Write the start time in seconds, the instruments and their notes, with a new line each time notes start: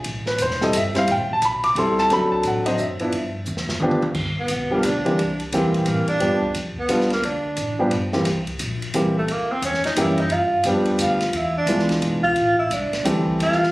0.04 upright bass A1, ride
0.26 grand piano B4, snare
0.38 upright bass E1, grand piano C5, hi-hat pedal, ride
0.51 snare
0.61 grand piano G3 C4 E4 A4 D#5, snare
0.73 upright bass G1, grand piano E5, hi-hat pedal, ride
0.95 grand piano G3 C4 E4 C5 F5, snare, ride
1.08 upright bass A1, grand piano G5, ride
1.19 upright bass G1
1.31 upright bass E1, grand piano A5
1.42 upright bass B1, grand piano B5, hi-hat pedal, ride
1.64 grand piano D6, ride
1.75 upright bass C2, grand piano G3 C4 E4 A4 C6, ride
1.98 grand piano A5, snare
2.10 upright bass D2, grand piano F#3 C4 D4 A4 B5, snare, ride
2.31 grand piano A5, muted upright bass stroke, kick
2.43 upright bass A2, hi-hat pedal, ride
2.47 grand piano F#5
2.66 grand piano F#3 C4 D4 C5 D#5, ride
2.78 upright bass F#2, grand piano E5, hi-hat pedal
2.99 grand piano F3 B3 D4 E4, ride
3.12 upright bass G2, ride
3.46 upright bass E2, hi-hat pedal
3.57 snare
3.69 muted upright bass stroke, snare
3.80 upright bass D2, grand piano F3 B3 D4 G4, mid tom
3.91 mid tom
4.02 mid tom
4.15 upright bass G1, kick, crash
4.39 tenor saxophone B3
4.48 upright bass B1, hi-hat pedal, ride
4.71 grand piano F3 G3 B3 D4 G4, tenor saxophone A#3
4.83 upright bass D2, tenor saxophone D4, hi-hat pedal, ride
5.05 grand piano E3 G3 A#3 C4 G4, ride
5.18 upright bass C2, ride
5.40 ride
5.52 upright bass E2, grand piano E3 G3 A#3 C4 G4, tenor saxophone C4, hi-hat pedal, ride
5.65 upright bass C2
5.74 upright bass A#1, ride
5.86 upright bass A2, tenor saxophone A#3, hi-hat pedal, ride
6.08 tenor saxophone D4, muted upright bass stroke, ride
6.20 upright bass G2, grand piano F3 G3 B3 D4 G4, ride
6.42 muted upright bass stroke, kick
6.54 upright bass F2, hi-hat pedal, ride
6.76 tenor saxophone B3, muted upright bass stroke, kick
6.89 upright bass C2, grand piano F3 G3 B3 D4 F4, hi-hat pedal, ride
7.01 snare
7.10 tenor saxophone A#3, snare, ride
7.22 upright bass D2, tenor saxophone D4, ride
7.57 upright bass A1, hi-hat pedal, ride
7.79 grand piano F3 G3 B3 D4 G4
7.91 upright bass G1, ride
8.13 grand piano E3 G3 A#3 C4 G4, muted upright bass stroke, snare
8.25 upright bass C2, snare, ride
8.47 kick, ride
8.59 upright bass A#1, hi-hat pedal, ride
8.82 ride
8.94 upright bass C2, grand piano E3 G3 A#3 C4 G4, hi-hat pedal, ride
9.18 tenor saxophone A3
9.28 upright bass C#2, tenor saxophone A#3, ride
9.52 tenor saxophone C4
9.62 upright bass E2, tenor saxophone C#4, hi-hat pedal, ride
9.74 snare
9.84 tenor saxophone D#4, muted upright bass stroke, snare, ride
9.96 upright bass F#2, grand piano E3 G3 A#3 C#4 G4, tenor saxophone E4, hi-hat pedal, ride
10.18 tenor saxophone D#4, ride
10.30 upright bass G2, tenor saxophone F4, ride
10.64 upright bass F2, grand piano F3 G3 B3 D4 G4, hi-hat pedal, ride
10.85 ride
10.99 upright bass D2, tenor saxophone F4, hi-hat pedal, ride
11.21 snare, ride
11.33 upright bass E2, tenor saxophone E4, ride
11.57 tenor saxophone D4
11.66 upright bass C2, grand piano E3 G#3 B3 D4 F4, hi-hat pedal, ride
11.79 snare
11.89 snare, ride
12.01 upright bass B1, ride
12.23 tenor saxophone F4, kick
12.36 upright bass A1, ride
12.59 tenor saxophone E4
12.70 upright bass C2, tenor saxophone D4, hi-hat pedal, ride
12.92 muted upright bass stroke, snare, ride
13.04 upright bass D2, grand piano E3 G3 A3 C4 G4, hi-hat pedal, ride
13.27 kick
13.39 upright bass E2, tenor saxophone F4, ride
13.52 snare
13.63 snare